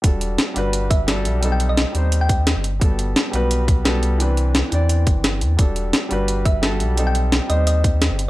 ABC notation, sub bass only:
X:1
M:4/4
L:1/16
Q:"Swing 16ths" 1/4=173
K:Em
V:1 name="Sub bass" clef=bass
E,,,4 z2 G,,,8 B,,,2- | B,,,4- B,,, z ^D,,6- D,, G,,,3 | G,,,4 z2 B,,,8 C,,2- | C,,4- C,, z E,,4 G,,,4 E,,2 |
E,,,4 z2 G,,,8 B,,,2- | B,,,4- B,,, z ^D,,6- D,, G,,,3 |]